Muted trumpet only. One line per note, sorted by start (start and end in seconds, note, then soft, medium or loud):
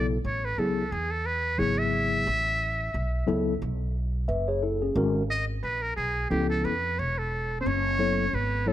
0.26 0.46 C#5 medium
0.45 0.60 B4 medium
0.58 0.93 A4 medium
0.92 1.13 G#4 medium
1.11 1.28 A4 medium
1.26 1.60 B4 loud
1.59 1.80 C#5 loud
1.78 3.47 E5 loud
5.30 5.45 D#5 loud
5.63 5.83 B4 loud
5.82 5.96 A#4 loud
5.96 6.28 G#4 medium
6.30 6.49 G4 medium
6.49 6.66 A4 medium
6.65 7.01 B4 medium
6.99 7.20 C#5 medium
7.18 7.60 A4 medium
7.61 7.68 C5 medium
7.67 8.36 C#5 loud
8.35 8.70 B4 medium
8.68 8.73 A4 medium